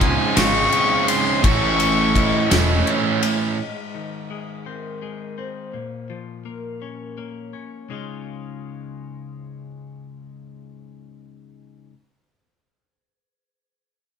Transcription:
Already playing: fingered electric bass C#2, overdriven electric guitar C#2 G#2 C#3 G#3 C4 F4, clean electric guitar C#2 C#4 F4
0.01 violin G#5, kick, ride
0.36 fingered electric bass G#1, overdriven electric guitar C#2 G#2 C#3 G#3 C4 F4, clean electric guitar C#3, vibraphone F5, violin C#6, snare, ride
0.72 clean electric guitar G#3, ride
1.07 clean electric guitar C#3, vibraphone C#5, violin C6, ride
1.43 fingered electric bass A1, overdriven electric guitar A2 E3 A3 C#4 E4 A4, clean electric guitar A2, violin C#6, kick, ride
1.79 clean electric guitar A4, ride
2.15 clean electric guitar E4, vibraphone D#5, kick, ride
2.50 fingered electric bass E1, overdriven electric guitar A2 E3 A3 C#4 E4 A4, clean electric guitar A3, snare, ride
2.87 clean electric guitar C#4, vibraphone C#5, ride
3.23 clean electric guitar A3, ride
3.58 clean electric guitar G#2, vibraphone D#5
3.94 clean electric guitar D#3
4.30 clean electric guitar G#3
4.66 clean electric guitar C4, vibraphone A#4
5.02 clean electric guitar G#3
5.38 clean electric guitar C4, vibraphone C5
5.74 clean electric guitar A#2
6.10 clean electric guitar F3
6.45 clean electric guitar A#3, vibraphone A#4
6.82 clean electric guitar C#4
7.18 clean electric guitar A#3, vibraphone C#5
7.53 clean electric guitar C#4
7.89 clean electric guitar C#2 G#2 C#3 G#3, vibraphone C#5
7.93 clean electric guitar F4

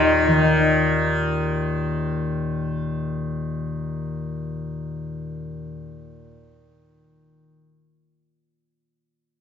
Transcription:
Already playing: tanpura D#2 A#2 D#3, sarangi D#4, bansuri D#5
0.28 tanpura D#3

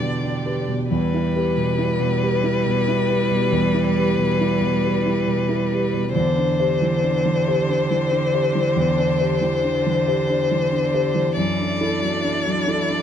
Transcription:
Already playing: grand piano E2 D4 G4 B4, cello D3, string section D4 D5 G5, violin D5
0.00 grand piano B2
0.23 grand piano D4
0.45 grand piano G4 B4
0.68 grand piano B2
0.90 grand piano E2, cello G3, string section E4 G4 B4, violin B4
1.14 grand piano E4
1.36 grand piano G4 B4
1.57 grand piano B2
1.78 grand piano E4
2.00 grand piano B2
2.22 grand piano G4 B4
2.44 grand piano E4
2.66 grand piano B2
2.88 grand piano E4
3.10 grand piano G4 B4
3.31 grand piano B2
3.52 grand piano E2
3.74 grand piano E4
3.96 grand piano G4 B4
4.18 grand piano B2
4.41 grand piano E4
4.62 grand piano B2
4.84 grand piano G4 B4
5.05 grand piano E4
5.28 grand piano B2
5.49 grand piano E4
5.71 grand piano G4 B4
5.94 grand piano B2
6.14 grand piano E2, cello D3, string section D4 G4 C5, violin C5
6.38 grand piano D4
6.60 grand piano G4 C5
6.82 grand piano E3
7.04 grand piano D4
7.25 grand piano E3
7.47 grand piano G4 C5
7.69 grand piano D4
7.91 grand piano E3
8.12 grand piano D4
8.34 grand piano G4 C5
8.55 grand piano E3
8.76 grand piano E2
8.98 grand piano D4
9.20 grand piano G4 C5
9.41 grand piano E3
9.64 grand piano D4
9.86 grand piano E3
10.08 grand piano G4 C5
10.29 grand piano D4
10.51 grand piano E3
10.72 grand piano D4
10.94 grand piano G4 C5
11.15 grand piano E3
11.37 grand piano F#2, cello E3, string section D4 E4 A4, violin D5
11.59 grand piano D4
11.81 grand piano E4 A4
12.02 grand piano F#3
12.24 grand piano D4
12.46 grand piano F#3
12.68 grand piano E4 A4
12.90 grand piano D4

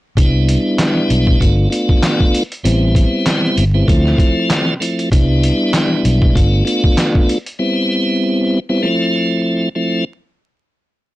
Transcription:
0.17 fingered electric bass C2, tonewheel organ G3 B3 D4 E4, kick, closed hi-hat
0.49 closed hi-hat
0.79 snare, clap, closed hi-hat
1.10 fingered electric bass B1, closed hi-hat
1.27 kick
1.40 fingered electric bass G1, tonewheel organ A3 B3 D4 F4, kick, closed hi-hat
1.70 tonewheel organ A3 B3 D4 F4, closed hi-hat
1.89 kick
2.03 snare, clap, closed hi-hat
2.20 kick
2.35 closed hi-hat
2.52 closed hi-hat
2.64 fingered electric bass A1, tonewheel organ G3 B3 C4 E4, closed hi-hat
2.95 kick, closed hi-hat
3.26 snare, clap, closed hi-hat
3.58 fingered electric bass G1, closed hi-hat
3.74 tonewheel organ G3 B3 C4 E4
3.87 fingered electric bass D2, tonewheel organ F3 A3 C4 E4, kick, closed hi-hat
4.05 snare
4.18 kick, closed hi-hat
4.50 snare, clap, closed hi-hat
4.80 tonewheel organ F3 A3 C4 E4, closed hi-hat
4.99 closed hi-hat
5.11 fingered electric bass C2, tonewheel organ G3 B3 D4 E4, kick, closed hi-hat
5.43 closed hi-hat
5.74 snare, clap, closed hi-hat
6.05 fingered electric bass B1, closed hi-hat
6.22 kick
6.35 fingered electric bass G1, tonewheel organ A3 B3 D4 F4, kick, closed hi-hat
6.65 tonewheel organ A3 B3 D4 F4, closed hi-hat
6.84 kick
6.98 snare, clap, closed hi-hat
7.15 kick
7.29 closed hi-hat
7.46 closed hi-hat
7.59 tonewheel organ G3 B3 C4 E4
8.69 tonewheel organ G3 B3 C4 E4
8.83 tonewheel organ F3 A3 C4 E4
9.75 tonewheel organ F3 A3 C4 E4

